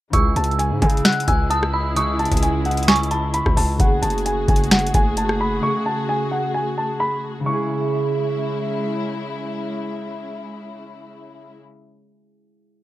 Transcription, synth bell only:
0.13 1.01 E6 loud
1.05 1.27 F#6 medium
1.28 1.49 E6 medium
1.51 1.72 D#6 medium
1.73 1.95 E6 medium
1.96 2.84 D#6 loud
2.88 3.10 C#6 loud
3.11 3.76 B5 medium

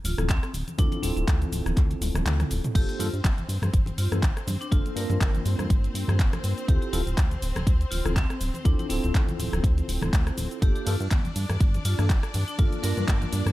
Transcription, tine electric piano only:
0.18 0.28 C4 medium
0.18 0.28 E4 medium
0.18 0.28 F4 medium
0.18 0.28 A4 medium
0.78 1.00 C4 medium
0.78 1.00 E4 medium
0.78 1.01 F4 medium
0.78 1.01 A4 loud
1.02 2.72 C4 medium
1.02 2.72 E4 medium
1.02 2.73 F4 medium
1.02 2.73 A4 medium
2.75 2.97 A#3 medium
2.75 2.97 D4 medium
2.75 2.97 F4 medium
2.75 2.97 A4 medium
2.99 3.07 A#3 loud
2.99 3.07 D4 medium
2.99 3.07 F4 medium
2.99 3.07 A4 loud
4.11 4.21 A#3 medium
4.11 4.21 D4 medium
4.11 4.21 F4 medium
4.11 4.22 A4 medium
4.71 4.94 A#3 medium
4.71 4.94 D4 medium
4.71 4.94 F4 medium
4.71 4.94 A4 loud
4.96 6.66 A#3 medium
4.96 6.66 D4 medium
4.96 6.66 F4 medium
4.96 6.67 A#4 medium
6.68 6.90 C4 medium
6.68 6.90 E4 medium
6.68 6.91 F4 medium
6.68 6.91 A4 loud
6.92 7.00 C4 loud
6.92 7.00 E4 medium
6.92 7.01 F4 medium
6.92 7.01 A4 loud
8.05 8.14 C4 medium
8.05 8.15 E4 medium
8.05 8.15 F4 medium
8.05 8.15 A4 medium
8.64 8.87 C4 medium
8.64 8.87 E4 medium
8.64 8.87 F4 medium
8.64 8.87 A4 loud
8.89 10.59 C4 medium
8.89 10.59 E4 medium
8.89 10.60 F4 medium
8.89 10.60 A4 medium
10.61 10.84 A#3 medium
10.61 10.84 D4 medium
10.61 10.84 F4 medium
10.61 10.84 A4 loud
10.86 10.94 A#3 loud
10.86 10.94 D4 medium
10.86 10.94 F4 medium
10.86 10.94 A4 loud
11.98 12.08 A#3 medium
11.98 12.08 D4 medium
11.98 12.08 F4 medium
11.98 12.08 A4 medium
12.58 12.80 A#3 medium
12.58 12.81 D4 medium
12.58 12.81 F4 medium
12.58 12.81 A4 loud
12.82 13.52 A#3 medium
12.82 13.52 D4 medium
12.82 13.52 F4 medium
12.82 13.52 A#4 medium

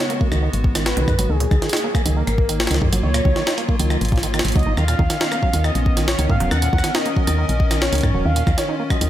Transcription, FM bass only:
0.32 0.49 C#2 medium
0.53 0.94 G#1 medium
0.97 1.06 B1 loud
1.08 1.17 F#2 medium
1.19 1.27 G#1 medium
1.30 1.47 C#2 medium
1.51 1.60 C#2 medium
2.06 2.23 C#2 medium
2.27 2.67 G#1 loud
2.71 2.80 C#2 medium
2.82 2.90 F#2 medium
2.93 3.01 G#1 medium
3.03 3.21 C#2 loud
3.25 3.34 C#2 medium
3.80 3.97 C#2 medium
4.01 4.41 G#1 loud
4.45 4.53 G#1 loud
4.56 4.64 C#2 loud
4.66 4.75 G#1 medium
4.77 4.95 D#2 loud
4.99 5.08 D#2 medium
5.53 5.71 D#2 medium
5.75 6.15 A#1 medium
6.19 6.27 C#2 loud
6.30 6.38 G#2 medium
6.40 6.49 D#1 loud
6.51 6.69 D#2 medium
6.73 6.82 D#2 medium
7.27 7.45 D#2 medium
7.49 7.89 A#1 loud
7.93 8.01 C#2 loud
8.03 8.12 G#2 medium
8.14 8.23 D#1 medium
8.25 8.43 D#2 medium
8.47 8.56 D#2 medium
9.01 9.10 D#2 medium

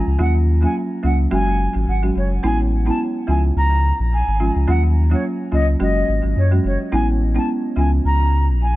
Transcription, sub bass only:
0.07 0.17 C#2 medium
0.19 0.66 D#2 loud
1.03 1.27 C#2 medium
1.31 1.68 F#1 loud
1.75 1.85 G#1 loud
1.87 2.11 G#1 medium
2.16 2.39 F#1 medium
2.43 2.90 A1 loud
3.28 3.51 C#2 loud
3.56 3.92 C#2 loud
3.99 4.23 A#1 medium
4.27 4.51 G#1 medium
4.55 4.66 C#2 medium
4.68 5.14 D#2 loud
5.52 5.75 C#2 medium
5.80 6.03 F#1 loud
6.08 6.21 G#1 medium
6.24 6.34 G#1 medium
6.36 6.59 F#2 medium
6.64 6.77 F#1 medium
6.92 7.39 A1 loud
7.76 8.00 C#2 loud
8.04 8.49 C#2 loud
8.48 8.76 A#1 medium

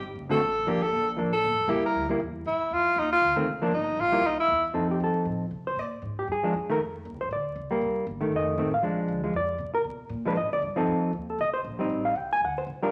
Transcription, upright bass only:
0.00 0.15 G1 loud
0.15 0.40 F#1 medium
0.41 0.66 A1 medium
0.67 0.92 G1 medium
0.92 1.17 A#1 loud
1.18 1.43 A1 medium
1.44 1.52 A#1 medium
1.52 1.60 G1 medium
1.61 1.68 F1 medium
1.69 1.94 C2 medium
1.94 2.19 D2 loud
2.20 2.44 E2 medium
2.45 2.59 G2 medium
2.61 muted upright bass stroke soft
2.71 2.95 F2 medium
2.96 3.21 D#2 loud
3.21 3.46 D2 medium
3.47 3.61 C2 medium
3.62 muted upright bass stroke soft
3.71 3.96 G1 loud
3.97 4.22 A#1 loud
4.22 4.47 C2 loud
4.48 4.73 E2 loud
4.74 4.99 F2 medium
5.00 5.14 G2 medium
5.15 muted upright bass stroke soft
5.25 5.50 A2 medium
5.51 5.75 C3 medium
5.76 6.01 A#2 medium
6.02 6.27 G#2 medium
6.28 6.42 G2 medium
6.43 muted upright bass stroke soft
6.54 6.78 F#2 medium
6.79 7.04 F2 medium
7.05 7.13 D#2 medium
7.13 7.22 C2 medium
7.22 7.30 A1 medium
7.31 7.55 D2 medium
7.56 7.80 C#2 medium
7.81 8.06 C2 medium
8.07 8.31 G1 loud
8.32 8.57 F1 medium
8.58 8.82 A1 medium
8.83 9.08 A#1 medium
9.08 9.33 D2 medium
9.33 9.58 F2 medium
9.58 9.84 C3 medium
9.84 10.09 B2 medium
10.09 10.35 A#2 loud
10.36 10.45 G#2 medium
10.45 10.52 F2 medium
10.53 10.61 D2 medium
10.62 10.86 G2 medium
10.87 11.12 F2 medium
11.13 11.38 D#2 medium
11.38 11.63 C2 medium
11.64 11.89 A#1 medium
11.89 12.14 A1 medium
12.15 12.40 C2 medium
12.41 12.66 D2 medium
12.67 12.91 C2 medium

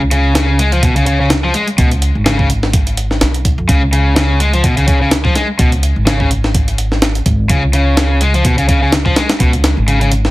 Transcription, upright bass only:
0.00 1.50 C#2 loud
1.78 2.10 C#2 loud
2.15 3.21 G#1 medium
3.21 3.53 B1 medium
3.58 3.66 F2 loud
3.69 5.32 C#2 loud
5.59 5.91 C#2 loud
5.96 7.25 G#1 medium
7.26 7.45 G#1 loud
7.50 9.12 C#2 loud
9.40 9.72 C#2 loud
9.77 10.31 G#1 medium

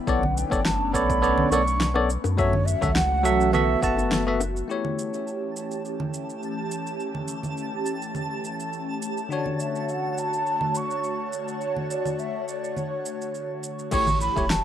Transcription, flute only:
0.08 0.38 F#5 medium
0.37 0.66 G5 medium
0.64 0.94 A5 medium
0.92 1.48 B5 loud
1.49 2.04 C#6 loud
2.38 2.67 C#5 loud
2.65 2.96 E5 loud
2.94 3.53 F#5 loud
3.52 4.39 E5 loud
9.32 9.62 D5 medium
9.61 9.92 E5 medium
9.91 10.20 F#5 medium
10.19 10.78 A5 loud
10.77 11.33 C#6 medium
11.62 11.88 C#5 medium
11.90 12.21 D5 medium
12.19 12.48 E5 loud
12.48 12.79 D5 medium
12.77 13.63 C#5 medium
13.92 14.19 C#6 loud
14.21 14.51 B5 loud
14.50 14.64 A5 loud

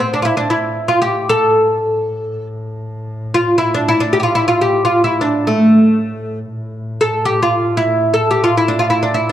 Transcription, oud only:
0.00 0.13 C4 medium
0.14 0.22 D4 medium
0.22 0.36 E4 medium
0.22 0.25 F4 medium
0.37 0.50 D4 medium
0.50 0.86 E4 medium
0.88 1.00 F4 medium
1.02 1.29 G4 medium
1.29 2.46 A4 medium
3.34 3.58 F4 medium
3.58 3.74 E4 medium
3.74 3.88 D4 medium
3.88 4.01 E4 medium
4.00 4.12 D4 medium
4.13 4.19 G4 medium
4.20 4.33 F4 medium
4.20 4.22 G4 medium
4.35 4.47 E4 medium
4.48 4.61 F4 medium
4.61 4.84 G4 medium
4.85 5.04 F4 medium
5.04 5.20 E4 medium
5.21 5.48 D4 medium
5.47 6.38 A3 medium
7.01 7.24 A4 medium
7.25 7.41 G4 medium
7.43 7.78 F4 medium
7.77 8.15 E4 medium
8.14 8.29 A4 medium
8.31 8.43 G4 medium
8.44 8.57 F4 medium
8.57 8.69 E4 medium
8.68 8.80 D4 medium
8.79 8.90 F4 medium
8.90 9.03 E4 medium
9.03 9.16 D4 medium
9.14 9.30 E4 medium

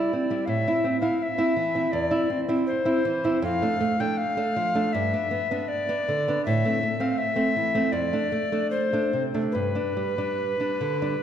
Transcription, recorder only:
0.00 0.47 D5 medium
0.45 1.00 E5 medium
0.45 0.50 F5 medium
1.01 1.18 F5 medium
1.18 1.24 F5 medium
1.23 1.94 E5 medium
1.92 2.40 D5 medium
2.67 3.39 C5 medium
3.44 4.02 F5 loud
4.00 4.19 G5 medium
4.17 4.94 F5 medium
4.93 5.70 E5 medium
5.68 6.45 D5 medium
6.45 7.02 E5 loud
7.01 7.19 F5 medium
7.18 7.94 E5 loud
7.92 8.70 D5 medium
8.71 9.23 C5 medium
9.52 11.23 B4 medium

